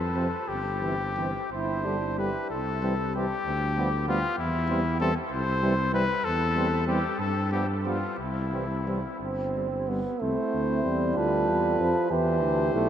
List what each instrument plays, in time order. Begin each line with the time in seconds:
Already playing: tuba F2, trumpet A4
0.15 trombone C3, french horn F3, trumpet C4
0.48 tuba G1, trumpet G4
0.82 trombone C3, french horn E3, trumpet C4
1.17 trombone C3, french horn E3, trumpet C4
1.52 tuba G1, trumpet E4 C5
1.84 trombone D3, french horn G3, trumpet D4
2.18 trombone D3, french horn G3, trumpet G4 B4
2.50 tuba C2, trumpet A4
2.82 trombone E3, french horn G3, trumpet C4
3.14 trombone E3, french horn G3, trumpet C4 G4
3.46 tuba D2
3.77 trombone F3, french horn G3, trumpet B3
4.08 trombone F3, french horn G3, trumpet B3 F4
4.39 tuba E2, trumpet E4
4.69 trombone E3, french horn G3, trumpet C4
5.00 trombone E3, french horn G3, trumpet C4 A4
5.32 tuba C2, trumpet C5
5.63 trombone E3, french horn G3, trumpet C4
5.93 trombone E3, french horn G3, trumpet C4 B4
6.24 tuba E2, trumpet A4
6.55 trombone E3, french horn G3, trumpet C4
6.87 trombone E3, french horn G3, trumpet C4 G4
7.19 tuba G2, trumpet A4
7.52 trombone F3, french horn G3, trumpet B3 G4
7.85 trombone F3, french horn G3, trumpet B3 F4
8.19 tuba C2, trumpet E4
8.53 trombone E3, french horn G3, trumpet C4
8.86 trombone E3, french horn G3, trumpet C4
9.20 tuba G1, trombone C4
9.56 french horn G3, trumpet C4
9.88 french horn G3, trombone B3, trumpet C4
10.21 tuba C2, trombone A3, french horn C4, trumpet E4 C5
10.53 tuba D2
10.84 tuba E2, trombone G3
11.16 tuba D2, french horn F4, trumpet A4 B4
11.48 tuba E2
11.79 tuba F2, trombone F3
12.11 tuba E2, trombone E3, french horn E4, trumpet G4 C5
12.42 tuba D2
12.74 tuba B1, trombone A3